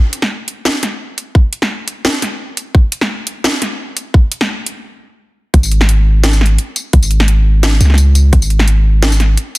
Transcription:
0.13 closed hi-hat
0.22 snare
0.48 closed hi-hat
0.65 snare
0.83 snare, closed hi-hat
1.18 closed hi-hat
1.35 kick
1.53 closed hi-hat
1.62 snare
1.88 closed hi-hat
2.05 snare
2.22 snare, closed hi-hat
2.57 closed hi-hat
2.75 kick
2.92 closed hi-hat
3.01 snare
3.27 closed hi-hat
3.44 snare
3.62 snare, closed hi-hat
3.97 closed hi-hat
4.14 kick
4.32 closed hi-hat
4.41 snare
4.66 closed hi-hat
5.54 808-style bass G#1, kick, closed hi-hat
5.63 tambourine
5.71 closed hi-hat
5.81 snare
5.89 closed hi-hat
6.24 snare, closed hi-hat
6.33 tambourine
6.41 snare
6.46 closed hi-hat
6.58 closed hi-hat
6.76 closed hi-hat, tambourine
6.93 808-style bass G#1, kick, closed hi-hat
7.03 tambourine
7.11 closed hi-hat
7.20 snare
7.28 closed hi-hat
7.63 snare, closed hi-hat
7.80 808-style bass C#2, snare, closed hi-hat, tambourine
7.85 snare
7.90 snare
7.94 snare, closed hi-hat, tambourine
8.15 closed hi-hat, tambourine
8.33 808-style bass G#1, kick, closed hi-hat
8.42 tambourine
8.50 closed hi-hat
8.59 snare
8.68 closed hi-hat
9.03 snare, closed hi-hat
9.12 tambourine
9.20 snare, closed hi-hat
9.37 closed hi-hat

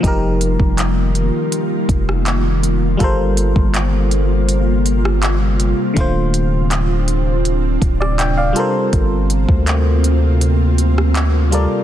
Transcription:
0.00 808-style bass F1, ambient pad D#3 G3 A#3 F4, fm electric piano F3 D#4, kick, closed hi-hat
0.05 fm electric piano G4 A#4
0.41 closed hi-hat
0.60 808-style bass F1, kick
0.78 clap, closed hi-hat
1.15 closed hi-hat
1.52 closed hi-hat
1.89 808-style bass F1, kick, closed hi-hat
2.09 cross-stick
2.26 clap, closed hi-hat
2.63 closed hi-hat
2.97 808-style bass G1, ambient pad C3 G3 A#3, fm electric piano G3 F4 A4, kick, closed hi-hat
3.03 fm electric piano A#4 C5
3.37 closed hi-hat
3.56 808-style bass G1, kick
3.74 clap, closed hi-hat
4.11 closed hi-hat
4.49 closed hi-hat
4.86 closed hi-hat
5.05 cross-stick
5.22 clap, closed hi-hat
5.60 closed hi-hat
5.94 808-style bass D1, fm electric piano D3 A3, ambient pad C4 D4, kick, closed hi-hat
5.98 fm electric piano F4 C5
6.34 closed hi-hat
6.71 clap, closed hi-hat
7.08 closed hi-hat
7.45 closed hi-hat
7.82 808-style bass D1, kick, closed hi-hat
8.01 fm electric piano D5, cross-stick
8.19 fm electric piano G5, clap, closed hi-hat
8.37 fm electric piano D5 F5
8.53 fm electric piano G3 F4 A4, ambient pad A#3 F4, closed hi-hat
8.58 fm electric piano A#4 C5
8.93 808-style bass G1, kick, closed hi-hat
9.30 closed hi-hat
9.49 808-style bass D2, kick
9.67 clap, closed hi-hat
10.04 closed hi-hat
10.41 closed hi-hat
10.78 closed hi-hat
10.98 cross-stick
11.15 clap, closed hi-hat
11.51 fm electric piano G3 F4 A4 A#4 D5, closed hi-hat

